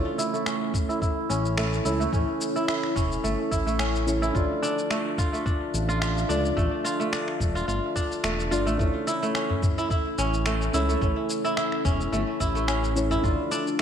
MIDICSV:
0, 0, Header, 1, 7, 480
1, 0, Start_track
1, 0, Tempo, 555556
1, 1838, Time_signature, 4, 2, 24, 8
1, 11940, End_track
2, 0, Start_track
2, 0, Title_t, "Synth keys"
2, 0, Program_c, 0, 88
2, 0, Note_on_c, 0, 61, 86
2, 0, Note_on_c, 0, 64, 74
2, 0, Note_on_c, 0, 69, 76
2, 0, Note_on_c, 0, 73, 97
2, 86, Control_c, 0, 64, 127
2, 1564, Note_off_c, 0, 61, 0
2, 1570, Note_off_c, 0, 64, 0
2, 1575, Note_off_c, 0, 69, 0
2, 1581, Note_off_c, 0, 73, 0
2, 1593, Note_on_c, 0, 61, 96
2, 1596, Note_on_c, 0, 64, 83
2, 1602, Note_on_c, 0, 69, 81
2, 1609, Note_on_c, 0, 73, 103
2, 1802, Note_off_c, 0, 61, 0
2, 1804, Note_off_c, 0, 64, 0
2, 1807, Note_off_c, 0, 69, 0
2, 1811, Note_off_c, 0, 73, 0
2, 1826, Note_on_c, 0, 61, 78
2, 1837, Note_on_c, 0, 64, 82
2, 1849, Note_on_c, 0, 69, 73
2, 1861, Note_on_c, 0, 73, 98
2, 3485, Note_off_c, 0, 61, 0
2, 3491, Note_off_c, 0, 64, 0
2, 3497, Note_off_c, 0, 69, 0
2, 3503, Note_off_c, 0, 73, 0
2, 3510, Note_on_c, 0, 61, 90
2, 3516, Note_on_c, 0, 64, 82
2, 3522, Note_on_c, 0, 69, 85
2, 3527, Note_on_c, 0, 73, 105
2, 3721, Note_off_c, 0, 61, 0
2, 3724, Note_off_c, 0, 64, 0
2, 3727, Note_off_c, 0, 69, 0
2, 3730, Note_off_c, 0, 73, 0
2, 3740, Note_on_c, 0, 62, 85
2, 3753, Note_on_c, 0, 65, 82
2, 3764, Note_on_c, 0, 69, 76
2, 3769, Control_c, 0, 64, 0
2, 3776, Note_on_c, 0, 74, 94
2, 3943, Control_c, 0, 64, 127
2, 5403, Note_off_c, 0, 62, 0
2, 5409, Note_off_c, 0, 65, 0
2, 5414, Note_off_c, 0, 69, 0
2, 5421, Note_off_c, 0, 74, 0
2, 5429, Note_on_c, 0, 62, 88
2, 5437, Note_on_c, 0, 65, 87
2, 5441, Note_on_c, 0, 69, 84
2, 5447, Note_on_c, 0, 74, 108
2, 5641, Note_off_c, 0, 62, 0
2, 5644, Note_off_c, 0, 65, 0
2, 5647, Note_off_c, 0, 69, 0
2, 5650, Note_off_c, 0, 74, 0
2, 5659, Note_on_c, 0, 62, 89
2, 5671, Note_on_c, 0, 65, 75
2, 5683, Note_on_c, 0, 69, 80
2, 5693, Note_on_c, 0, 74, 95
2, 7322, Note_off_c, 0, 62, 0
2, 7328, Note_off_c, 0, 65, 0
2, 7334, Note_off_c, 0, 69, 0
2, 7339, Note_off_c, 0, 74, 0
2, 7352, Note_on_c, 0, 62, 91
2, 7357, Note_on_c, 0, 65, 83
2, 7362, Note_on_c, 0, 69, 79
2, 7368, Note_on_c, 0, 74, 104
2, 7562, Note_off_c, 0, 62, 0
2, 7565, Note_off_c, 0, 65, 0
2, 7567, Note_off_c, 0, 69, 0
2, 7570, Note_off_c, 0, 74, 0
2, 7579, Note_on_c, 0, 61, 83
2, 7590, Note_on_c, 0, 64, 78
2, 7602, Note_on_c, 0, 69, 79
2, 7610, Control_c, 0, 64, 0
2, 7615, Note_on_c, 0, 73, 89
2, 7752, Control_c, 0, 64, 127
2, 9242, Note_off_c, 0, 61, 0
2, 9248, Note_off_c, 0, 64, 0
2, 9254, Note_off_c, 0, 69, 0
2, 9260, Note_off_c, 0, 73, 0
2, 9272, Note_on_c, 0, 61, 93
2, 9279, Note_on_c, 0, 64, 83
2, 9284, Note_on_c, 0, 69, 84
2, 9291, Note_on_c, 0, 73, 101
2, 9482, Note_off_c, 0, 61, 0
2, 9486, Note_off_c, 0, 64, 0
2, 9488, Note_off_c, 0, 69, 0
2, 9491, Note_off_c, 0, 73, 0
2, 9504, Note_on_c, 0, 61, 84
2, 9514, Note_on_c, 0, 64, 80
2, 9525, Note_on_c, 0, 69, 79
2, 9538, Note_on_c, 0, 73, 96
2, 11164, Note_off_c, 0, 61, 0
2, 11170, Note_off_c, 0, 64, 0
2, 11175, Note_off_c, 0, 69, 0
2, 11182, Note_off_c, 0, 73, 0
2, 11191, Note_on_c, 0, 61, 92
2, 11196, Note_on_c, 0, 64, 86
2, 11201, Note_on_c, 0, 69, 87
2, 11208, Note_on_c, 0, 73, 107
2, 11402, Note_off_c, 0, 61, 0
2, 11404, Note_off_c, 0, 64, 0
2, 11407, Note_off_c, 0, 69, 0
2, 11410, Note_off_c, 0, 73, 0
2, 11421, Note_on_c, 0, 62, 89
2, 11431, Note_on_c, 0, 65, 79
2, 11444, Note_on_c, 0, 69, 83
2, 11447, Control_c, 0, 64, 0
2, 11456, Note_on_c, 0, 74, 92
2, 11615, Control_c, 0, 64, 127
2, 11940, Note_off_c, 0, 62, 0
2, 11940, Note_off_c, 0, 65, 0
2, 11940, Note_off_c, 0, 69, 0
2, 11940, Note_off_c, 0, 74, 0
2, 11940, End_track
3, 0, Start_track
3, 0, Title_t, "Ambient pad"
3, 0, Program_c, 1, 92
3, 0, Note_on_c, 1, 57, 78
3, 0, Note_on_c, 1, 69, 60
3, 0, Note_on_c, 1, 76, 80
3, 80, Note_on_c, 1, 64, 78
3, 1315, Note_off_c, 1, 76, 0
3, 3756, Note_off_c, 1, 57, 0
3, 3757, Note_off_c, 1, 64, 0
3, 3758, Note_on_c, 1, 62, 79
3, 4044, Note_on_c, 1, 76, 84
3, 4223, Note_on_c, 1, 77, 80
3, 7597, Note_on_c, 1, 57, 76
3, 7598, Note_off_c, 1, 62, 0
3, 7601, Note_off_c, 1, 77, 0
3, 7754, Note_on_c, 1, 64, 72
3, 8786, Note_off_c, 1, 76, 0
3, 11437, Note_off_c, 1, 57, 0
3, 11438, Note_on_c, 1, 62, 75
3, 11439, Note_off_c, 1, 64, 0
3, 11660, Note_on_c, 1, 76, 79
3, 11776, Note_on_c, 1, 77, 86
3, 11940, Note_off_c, 1, 62, 0
3, 11940, Note_off_c, 1, 69, 0
3, 11940, Note_off_c, 1, 76, 0
3, 11940, Note_off_c, 1, 77, 0
3, 11940, End_track
4, 0, Start_track
4, 0, Title_t, "Kora"
4, 0, Program_c, 2, 46
4, 0, Note_on_c, 2, 57, 76
4, 0, Note_on_c, 2, 62, 85
4, 0, Note_on_c, 2, 65, 90
4, 157, Note_on_c, 2, 64, 91
4, 209, Note_off_c, 2, 65, 0
4, 286, Note_off_c, 2, 57, 0
4, 289, Note_on_c, 2, 57, 69
4, 399, Note_on_c, 2, 61, 77
4, 451, Note_off_c, 2, 62, 0
4, 765, Note_off_c, 2, 64, 0
4, 769, Note_on_c, 2, 64, 93
4, 875, Note_off_c, 2, 64, 0
4, 879, Note_on_c, 2, 64, 75
4, 1116, Note_off_c, 2, 61, 0
4, 1119, Note_on_c, 2, 61, 86
4, 1357, Note_off_c, 2, 57, 0
4, 1360, Note_on_c, 2, 57, 80
4, 1595, Note_off_c, 2, 64, 0
4, 1599, Note_on_c, 2, 64, 91
4, 1725, Note_off_c, 2, 57, 0
4, 1729, Note_on_c, 2, 57, 73
4, 1833, Note_off_c, 2, 61, 0
4, 1837, Note_on_c, 2, 61, 79
4, 2206, Note_off_c, 2, 64, 0
4, 2209, Note_on_c, 2, 64, 92
4, 2314, Note_off_c, 2, 64, 0
4, 2318, Note_on_c, 2, 64, 74
4, 2552, Note_off_c, 2, 61, 0
4, 2555, Note_on_c, 2, 61, 97
4, 2793, Note_off_c, 2, 57, 0
4, 2796, Note_on_c, 2, 57, 77
4, 3032, Note_off_c, 2, 64, 0
4, 3036, Note_on_c, 2, 64, 89
4, 3163, Note_off_c, 2, 57, 0
4, 3167, Note_on_c, 2, 57, 74
4, 3274, Note_off_c, 2, 61, 0
4, 3277, Note_on_c, 2, 61, 81
4, 3642, Note_off_c, 2, 64, 0
4, 3646, Note_on_c, 2, 64, 99
4, 3756, Note_on_c, 2, 65, 78
4, 3808, Note_off_c, 2, 64, 0
4, 3996, Note_on_c, 2, 62, 94
4, 4048, Note_off_c, 2, 61, 0
4, 4233, Note_off_c, 2, 57, 0
4, 4236, Note_on_c, 2, 57, 83
4, 4474, Note_off_c, 2, 65, 0
4, 4477, Note_on_c, 2, 65, 101
4, 4601, Note_off_c, 2, 57, 0
4, 4605, Note_on_c, 2, 57, 70
4, 4712, Note_off_c, 2, 62, 0
4, 4715, Note_on_c, 2, 62, 71
4, 5083, Note_off_c, 2, 65, 0
4, 5086, Note_on_c, 2, 65, 96
4, 5192, Note_off_c, 2, 65, 0
4, 5196, Note_on_c, 2, 65, 79
4, 5431, Note_off_c, 2, 62, 0
4, 5435, Note_on_c, 2, 62, 88
4, 5670, Note_off_c, 2, 57, 0
4, 5674, Note_on_c, 2, 57, 80
4, 5910, Note_off_c, 2, 65, 0
4, 5914, Note_on_c, 2, 65, 94
4, 6042, Note_off_c, 2, 57, 0
4, 6045, Note_on_c, 2, 57, 74
4, 6153, Note_off_c, 2, 62, 0
4, 6156, Note_on_c, 2, 62, 80
4, 6522, Note_off_c, 2, 65, 0
4, 6526, Note_on_c, 2, 65, 93
4, 6631, Note_off_c, 2, 65, 0
4, 6634, Note_on_c, 2, 65, 76
4, 6871, Note_off_c, 2, 62, 0
4, 6875, Note_on_c, 2, 62, 89
4, 7111, Note_off_c, 2, 57, 0
4, 7115, Note_on_c, 2, 57, 74
4, 7351, Note_off_c, 2, 65, 0
4, 7355, Note_on_c, 2, 65, 88
4, 7483, Note_off_c, 2, 57, 0
4, 7486, Note_on_c, 2, 57, 69
4, 7594, Note_off_c, 2, 57, 0
4, 7598, Note_on_c, 2, 57, 76
4, 7838, Note_on_c, 2, 64, 91
4, 7890, Note_off_c, 2, 65, 0
4, 7967, Note_off_c, 2, 57, 0
4, 7971, Note_on_c, 2, 57, 70
4, 8080, Note_on_c, 2, 61, 72
4, 8132, Note_off_c, 2, 62, 0
4, 8446, Note_off_c, 2, 64, 0
4, 8450, Note_on_c, 2, 64, 100
4, 8556, Note_off_c, 2, 64, 0
4, 8560, Note_on_c, 2, 64, 77
4, 8796, Note_off_c, 2, 61, 0
4, 8799, Note_on_c, 2, 61, 93
4, 9036, Note_off_c, 2, 57, 0
4, 9039, Note_on_c, 2, 57, 81
4, 9276, Note_off_c, 2, 64, 0
4, 9279, Note_on_c, 2, 64, 98
4, 9405, Note_off_c, 2, 57, 0
4, 9408, Note_on_c, 2, 57, 69
4, 9515, Note_off_c, 2, 61, 0
4, 9518, Note_on_c, 2, 61, 77
4, 9886, Note_off_c, 2, 64, 0
4, 9889, Note_on_c, 2, 64, 93
4, 9995, Note_off_c, 2, 64, 0
4, 9998, Note_on_c, 2, 64, 76
4, 10234, Note_off_c, 2, 61, 0
4, 10237, Note_on_c, 2, 61, 94
4, 10472, Note_off_c, 2, 57, 0
4, 10476, Note_on_c, 2, 57, 72
4, 10713, Note_off_c, 2, 64, 0
4, 10716, Note_on_c, 2, 64, 91
4, 10841, Note_off_c, 2, 57, 0
4, 10844, Note_on_c, 2, 57, 77
4, 10950, Note_off_c, 2, 61, 0
4, 10953, Note_on_c, 2, 61, 79
4, 11323, Note_off_c, 2, 64, 0
4, 11326, Note_on_c, 2, 64, 98
4, 11437, Note_on_c, 2, 65, 78
4, 11488, Note_off_c, 2, 64, 0
4, 11676, Note_on_c, 2, 62, 100
4, 11728, Note_off_c, 2, 61, 0
4, 11913, Note_off_c, 2, 57, 0
4, 11940, Note_off_c, 2, 62, 0
4, 11940, Note_off_c, 2, 65, 0
4, 11940, End_track
5, 0, Start_track
5, 0, Title_t, "Analog synth bass"
5, 0, Program_c, 3, 38
5, 1121, Note_on_c, 3, 33, 80
5, 1561, Note_off_c, 3, 33, 0
5, 1602, Note_on_c, 3, 37, 75
5, 1792, Note_off_c, 3, 37, 0
5, 1839, Note_on_c, 3, 33, 97
5, 1940, Note_off_c, 3, 33, 0
5, 2559, Note_on_c, 3, 28, 92
5, 2750, Note_off_c, 3, 28, 0
5, 2798, Note_on_c, 3, 31, 78
5, 2900, Note_off_c, 3, 31, 0
5, 3037, Note_on_c, 3, 33, 88
5, 3719, Note_off_c, 3, 33, 0
5, 3756, Note_on_c, 3, 33, 91
5, 3859, Note_off_c, 3, 33, 0
5, 4957, Note_on_c, 3, 33, 84
5, 5399, Note_off_c, 3, 33, 0
5, 5438, Note_on_c, 3, 37, 76
5, 5630, Note_off_c, 3, 37, 0
5, 5677, Note_on_c, 3, 33, 97
5, 5779, Note_off_c, 3, 33, 0
5, 6396, Note_on_c, 3, 28, 88
5, 6588, Note_off_c, 3, 28, 0
5, 6636, Note_on_c, 3, 31, 83
5, 6738, Note_off_c, 3, 31, 0
5, 7117, Note_on_c, 3, 28, 83
5, 7357, Note_on_c, 3, 31, 85
5, 7370, Note_off_c, 3, 28, 0
5, 7489, Note_on_c, 3, 33, 76
5, 7502, Note_off_c, 3, 31, 0
5, 7574, Note_off_c, 3, 33, 0
5, 7597, Note_on_c, 3, 33, 96
5, 7699, Note_off_c, 3, 33, 0
5, 8798, Note_on_c, 3, 33, 82
5, 9239, Note_off_c, 3, 33, 0
5, 9278, Note_on_c, 3, 37, 77
5, 9469, Note_off_c, 3, 37, 0
5, 9517, Note_on_c, 3, 33, 98
5, 9619, Note_off_c, 3, 33, 0
5, 10238, Note_on_c, 3, 28, 84
5, 10429, Note_off_c, 3, 28, 0
5, 10478, Note_on_c, 3, 31, 82
5, 10579, Note_off_c, 3, 31, 0
5, 10718, Note_on_c, 3, 33, 89
5, 11399, Note_off_c, 3, 33, 0
5, 11436, Note_on_c, 3, 33, 101
5, 11538, Note_off_c, 3, 33, 0
5, 11940, End_track
6, 0, Start_track
6, 0, Title_t, "Udu"
6, 8211, Note_on_c, 9, 64, 80
6, 8298, Note_off_c, 9, 64, 0
6, 8324, Note_on_c, 9, 64, 77
6, 8410, Note_off_c, 9, 64, 0
6, 10239, Note_on_c, 9, 64, 84
6, 10326, Note_off_c, 9, 64, 0
6, 11330, Note_on_c, 9, 64, 69
6, 11417, Note_off_c, 9, 64, 0
6, 11940, End_track
7, 0, Start_track
7, 0, Title_t, "Drums"
7, 165, Note_on_c, 9, 82, 77
7, 252, Note_off_c, 9, 82, 0
7, 295, Note_on_c, 9, 82, 31
7, 382, Note_off_c, 9, 82, 0
7, 400, Note_on_c, 9, 26, 87
7, 405, Note_on_c, 9, 82, 40
7, 487, Note_off_c, 9, 26, 0
7, 492, Note_off_c, 9, 82, 0
7, 639, Note_on_c, 9, 36, 99
7, 645, Note_on_c, 9, 82, 75
7, 725, Note_off_c, 9, 36, 0
7, 732, Note_off_c, 9, 82, 0
7, 776, Note_on_c, 9, 82, 31
7, 862, Note_off_c, 9, 82, 0
7, 879, Note_on_c, 9, 36, 93
7, 886, Note_on_c, 9, 82, 42
7, 965, Note_off_c, 9, 36, 0
7, 973, Note_off_c, 9, 82, 0
7, 1126, Note_on_c, 9, 82, 73
7, 1213, Note_off_c, 9, 82, 0
7, 1256, Note_on_c, 9, 82, 28
7, 1342, Note_off_c, 9, 82, 0
7, 1361, Note_on_c, 9, 26, 100
7, 1366, Note_on_c, 9, 82, 44
7, 1447, Note_off_c, 9, 26, 0
7, 1452, Note_off_c, 9, 82, 0
7, 1495, Note_on_c, 9, 82, 29
7, 1582, Note_off_c, 9, 82, 0
7, 1605, Note_on_c, 9, 82, 67
7, 1691, Note_off_c, 9, 82, 0
7, 1736, Note_on_c, 9, 82, 31
7, 1822, Note_off_c, 9, 82, 0
7, 1838, Note_on_c, 9, 36, 107
7, 1844, Note_on_c, 9, 82, 42
7, 1925, Note_off_c, 9, 36, 0
7, 1930, Note_off_c, 9, 82, 0
7, 2083, Note_on_c, 9, 82, 80
7, 2170, Note_off_c, 9, 82, 0
7, 2212, Note_on_c, 9, 82, 30
7, 2299, Note_off_c, 9, 82, 0
7, 2319, Note_on_c, 9, 26, 92
7, 2324, Note_on_c, 9, 82, 41
7, 2405, Note_off_c, 9, 26, 0
7, 2410, Note_off_c, 9, 82, 0
7, 2449, Note_on_c, 9, 26, 28
7, 2535, Note_off_c, 9, 26, 0
7, 2558, Note_on_c, 9, 36, 101
7, 2563, Note_on_c, 9, 82, 72
7, 2645, Note_off_c, 9, 36, 0
7, 2650, Note_off_c, 9, 82, 0
7, 2695, Note_on_c, 9, 82, 33
7, 2781, Note_off_c, 9, 82, 0
7, 2805, Note_on_c, 9, 82, 44
7, 2891, Note_off_c, 9, 82, 0
7, 3038, Note_on_c, 9, 36, 59
7, 3043, Note_on_c, 9, 82, 80
7, 3124, Note_off_c, 9, 36, 0
7, 3130, Note_off_c, 9, 82, 0
7, 3174, Note_on_c, 9, 82, 32
7, 3260, Note_off_c, 9, 82, 0
7, 3277, Note_on_c, 9, 26, 103
7, 3282, Note_on_c, 9, 82, 47
7, 3363, Note_off_c, 9, 26, 0
7, 3368, Note_off_c, 9, 82, 0
7, 3414, Note_on_c, 9, 82, 31
7, 3500, Note_off_c, 9, 82, 0
7, 3523, Note_on_c, 9, 82, 69
7, 3609, Note_off_c, 9, 82, 0
7, 3653, Note_on_c, 9, 82, 33
7, 3739, Note_off_c, 9, 82, 0
7, 3757, Note_on_c, 9, 36, 109
7, 3762, Note_on_c, 9, 82, 40
7, 3844, Note_off_c, 9, 36, 0
7, 3849, Note_off_c, 9, 82, 0
7, 4004, Note_on_c, 9, 82, 77
7, 4090, Note_off_c, 9, 82, 0
7, 4134, Note_on_c, 9, 82, 31
7, 4220, Note_off_c, 9, 82, 0
7, 4239, Note_on_c, 9, 26, 87
7, 4244, Note_on_c, 9, 82, 41
7, 4325, Note_off_c, 9, 26, 0
7, 4330, Note_off_c, 9, 82, 0
7, 4477, Note_on_c, 9, 36, 104
7, 4482, Note_on_c, 9, 82, 76
7, 4564, Note_off_c, 9, 36, 0
7, 4568, Note_off_c, 9, 82, 0
7, 4613, Note_on_c, 9, 82, 34
7, 4699, Note_off_c, 9, 82, 0
7, 4717, Note_on_c, 9, 36, 100
7, 4722, Note_on_c, 9, 82, 42
7, 4803, Note_off_c, 9, 36, 0
7, 4808, Note_off_c, 9, 82, 0
7, 4964, Note_on_c, 9, 82, 76
7, 5050, Note_off_c, 9, 82, 0
7, 5094, Note_on_c, 9, 82, 30
7, 5180, Note_off_c, 9, 82, 0
7, 5199, Note_on_c, 9, 26, 99
7, 5204, Note_on_c, 9, 82, 44
7, 5285, Note_off_c, 9, 26, 0
7, 5290, Note_off_c, 9, 82, 0
7, 5335, Note_on_c, 9, 82, 30
7, 5421, Note_off_c, 9, 82, 0
7, 5444, Note_on_c, 9, 82, 78
7, 5530, Note_off_c, 9, 82, 0
7, 5575, Note_on_c, 9, 82, 31
7, 5662, Note_off_c, 9, 82, 0
7, 5677, Note_on_c, 9, 36, 114
7, 5684, Note_on_c, 9, 82, 39
7, 5763, Note_off_c, 9, 36, 0
7, 5770, Note_off_c, 9, 82, 0
7, 5924, Note_on_c, 9, 82, 75
7, 6010, Note_off_c, 9, 82, 0
7, 6054, Note_on_c, 9, 82, 32
7, 6141, Note_off_c, 9, 82, 0
7, 6159, Note_on_c, 9, 26, 92
7, 6164, Note_on_c, 9, 82, 43
7, 6245, Note_off_c, 9, 26, 0
7, 6250, Note_off_c, 9, 82, 0
7, 6289, Note_on_c, 9, 26, 29
7, 6375, Note_off_c, 9, 26, 0
7, 6397, Note_on_c, 9, 36, 100
7, 6403, Note_on_c, 9, 82, 74
7, 6483, Note_off_c, 9, 36, 0
7, 6489, Note_off_c, 9, 82, 0
7, 6534, Note_on_c, 9, 82, 32
7, 6620, Note_off_c, 9, 82, 0
7, 6643, Note_on_c, 9, 82, 41
7, 6730, Note_off_c, 9, 82, 0
7, 6877, Note_on_c, 9, 36, 58
7, 6881, Note_on_c, 9, 82, 79
7, 6963, Note_off_c, 9, 36, 0
7, 6968, Note_off_c, 9, 82, 0
7, 7013, Note_on_c, 9, 82, 30
7, 7099, Note_off_c, 9, 82, 0
7, 7118, Note_on_c, 9, 26, 99
7, 7123, Note_on_c, 9, 82, 46
7, 7205, Note_off_c, 9, 26, 0
7, 7210, Note_off_c, 9, 82, 0
7, 7254, Note_on_c, 9, 82, 29
7, 7340, Note_off_c, 9, 82, 0
7, 7363, Note_on_c, 9, 82, 73
7, 7449, Note_off_c, 9, 82, 0
7, 7492, Note_on_c, 9, 82, 33
7, 7578, Note_off_c, 9, 82, 0
7, 7597, Note_on_c, 9, 36, 110
7, 7602, Note_on_c, 9, 82, 39
7, 7683, Note_off_c, 9, 36, 0
7, 7689, Note_off_c, 9, 82, 0
7, 7843, Note_on_c, 9, 82, 75
7, 7929, Note_off_c, 9, 82, 0
7, 7973, Note_on_c, 9, 82, 31
7, 8059, Note_off_c, 9, 82, 0
7, 8077, Note_on_c, 9, 26, 87
7, 8082, Note_on_c, 9, 82, 40
7, 8164, Note_off_c, 9, 26, 0
7, 8169, Note_off_c, 9, 82, 0
7, 8317, Note_on_c, 9, 36, 97
7, 8321, Note_on_c, 9, 82, 71
7, 8403, Note_off_c, 9, 36, 0
7, 8408, Note_off_c, 9, 82, 0
7, 8452, Note_on_c, 9, 82, 33
7, 8538, Note_off_c, 9, 82, 0
7, 8557, Note_on_c, 9, 36, 98
7, 8561, Note_on_c, 9, 82, 40
7, 8643, Note_off_c, 9, 36, 0
7, 8647, Note_off_c, 9, 82, 0
7, 8800, Note_on_c, 9, 82, 72
7, 8887, Note_off_c, 9, 82, 0
7, 8931, Note_on_c, 9, 82, 28
7, 9017, Note_off_c, 9, 82, 0
7, 9034, Note_on_c, 9, 26, 100
7, 9040, Note_on_c, 9, 82, 46
7, 9121, Note_off_c, 9, 26, 0
7, 9126, Note_off_c, 9, 82, 0
7, 9171, Note_on_c, 9, 82, 29
7, 9257, Note_off_c, 9, 82, 0
7, 9280, Note_on_c, 9, 82, 71
7, 9367, Note_off_c, 9, 82, 0
7, 9412, Note_on_c, 9, 82, 31
7, 9498, Note_off_c, 9, 82, 0
7, 9517, Note_on_c, 9, 36, 100
7, 9522, Note_on_c, 9, 82, 37
7, 9604, Note_off_c, 9, 36, 0
7, 9608, Note_off_c, 9, 82, 0
7, 9761, Note_on_c, 9, 82, 76
7, 9848, Note_off_c, 9, 82, 0
7, 9893, Note_on_c, 9, 82, 29
7, 9979, Note_off_c, 9, 82, 0
7, 9997, Note_on_c, 9, 26, 91
7, 10002, Note_on_c, 9, 82, 39
7, 10084, Note_off_c, 9, 26, 0
7, 10089, Note_off_c, 9, 82, 0
7, 10128, Note_on_c, 9, 26, 26
7, 10215, Note_off_c, 9, 26, 0
7, 10238, Note_on_c, 9, 36, 92
7, 10242, Note_on_c, 9, 82, 69
7, 10324, Note_off_c, 9, 36, 0
7, 10329, Note_off_c, 9, 82, 0
7, 10374, Note_on_c, 9, 82, 29
7, 10460, Note_off_c, 9, 82, 0
7, 10483, Note_on_c, 9, 82, 41
7, 10569, Note_off_c, 9, 82, 0
7, 10717, Note_on_c, 9, 36, 56
7, 10721, Note_on_c, 9, 82, 78
7, 10804, Note_off_c, 9, 36, 0
7, 10808, Note_off_c, 9, 82, 0
7, 10852, Note_on_c, 9, 82, 28
7, 10939, Note_off_c, 9, 82, 0
7, 10957, Note_on_c, 9, 26, 96
7, 10962, Note_on_c, 9, 82, 43
7, 11044, Note_off_c, 9, 26, 0
7, 11049, Note_off_c, 9, 82, 0
7, 11093, Note_on_c, 9, 82, 28
7, 11180, Note_off_c, 9, 82, 0
7, 11203, Note_on_c, 9, 82, 71
7, 11289, Note_off_c, 9, 82, 0
7, 11332, Note_on_c, 9, 82, 29
7, 11418, Note_off_c, 9, 82, 0
7, 11436, Note_on_c, 9, 36, 105
7, 11442, Note_on_c, 9, 82, 40
7, 11523, Note_off_c, 9, 36, 0
7, 11529, Note_off_c, 9, 82, 0
7, 11680, Note_on_c, 9, 82, 78
7, 11766, Note_off_c, 9, 82, 0
7, 11812, Note_on_c, 9, 82, 30
7, 11899, Note_off_c, 9, 82, 0
7, 11940, End_track
0, 0, End_of_file